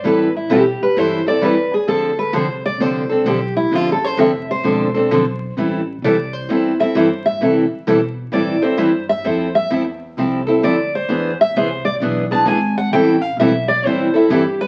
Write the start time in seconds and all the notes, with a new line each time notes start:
0.04 A2 E3 G3 C4 E4 A4 B4
0.36 E4
0.49 B2 E3 G3 C4 E4 G4 A4
0.81 B4, muted upright bass stroke
0.96 G2 E3 G3 C4 E4 A4 C5
1.26 C4 E4 A4 D5
1.41 E2 E3 G3 C4 E4 A4 B4
1.71 G#4, muted upright bass stroke
1.87 D2 D3 F3 C4 D4 A4
2.19 B4
2.33 C2 D3 F3 C4 D4 A4 C5
2.66 D5
2.78 C2 D3 F3 C4 D4 A4 C5
3.10 C4 D4 A4
3.24 B1 D3 F3 C4 D4 G4 A4
3.57 E4
3.71 A1 D3 F3 C4 D4 A4
3.75 F4
3.92 A4
4.04 C5
4.17 F1 D3 F3 C4 D4 A4 E5
4.51 C5
4.63 E1 D3 F3 C4 D4 A4
4.94 C4 D4 A4
5.10 B1 D3 F3 C4 D4 A4
5.57 A1 E3 G3 C4 E4 A4
6.02 C2 E3 G3 C4 E4 A4 D5
6.33 C5
6.49 E2 E3 G3 C4 E4 A4
6.80 C4 E4 A4 E5
6.95 G2 E3 G3 C4 E4 A4 C5
7.26 E5
7.41 C3 E3 G3 C4 E4 A4
7.71 muted upright bass stroke
7.87 B2 E3 G3 C4 E4 A4
8.32 A2 E3 G3 C4 E4 A4 D5
8.62 C4 E4 A4 C5
8.78 G2 E3 G3 C4 E4 A4
9.09 E5
9.24 F2 F3 C4 E4 A4 C5
9.55 E5
9.70 E2 F3 C4 E4 A4
10.17 C2 F3 C4 E4 A4
10.47 C4 E4 A4
10.62 D2 F3 C4 E4 A4 D5
10.95 C5
11.09 E2 E3 B3 D4 G#4
11.41 E5
11.54 C2 E3 B3 D4 G#4 C5
11.85 D5
12.00 B1 E3 B3 D4 G#4
12.31 B3 D4 G#4 A5
12.45 G#1 E3 B3 D4 G#4 G#5
12.78 F#5
12.91 A1 E3 G3 C4 E4 A4 G5
13.21 F5
13.37 B1 E3 G3 E5
13.41 C4 E4 A4
13.68 D5
13.83 E2 E3 G3 C4 E4 C5
13.88 A4
14.13 C4 E4 A4, muted upright bass stroke
14.28 G2 E3 G3 C4 E4 G4 A4
14.61 B4